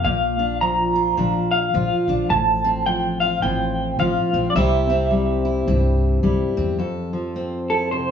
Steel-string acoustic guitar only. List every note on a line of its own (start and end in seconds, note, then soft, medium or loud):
0.00 0.39 A#3 soft
0.00 0.95 F4 medium
0.05 2.27 A#2 medium
0.39 1.17 D4 soft
0.62 1.16 F3 soft
0.95 1.74 F4 medium
1.17 1.73 F3 medium
1.17 2.08 D4 medium
1.74 2.85 F3 medium
1.74 2.28 F4 soft
2.09 2.28 D4 medium
2.30 3.42 A2 medium
2.64 3.43 C4 medium
2.86 3.98 F3 medium
3.21 3.99 F4 medium
3.43 4.52 A2 medium
3.43 4.34 C4 medium
3.99 4.55 F3 medium
3.99 4.53 F4 soft
4.34 4.56 C4 medium
4.56 5.68 C3 medium
4.56 5.10 G3 medium
4.56 4.88 C4 medium
4.56 5.44 E4 medium
4.56 6.79 G4 medium
4.90 5.67 C4 medium
5.11 6.22 G3 medium
5.45 6.22 E4 medium
5.67 6.77 G2 medium
5.67 6.56 C4 medium
6.23 6.77 G3 medium
6.23 6.77 E4 soft
6.57 6.77 C4 medium
6.78 8.11 F2 medium
6.78 8.11 A4 medium
7.13 8.11 F3 soft
7.36 8.11 C4 soft
7.70 8.11 E4 soft
7.92 8.11 C3 medium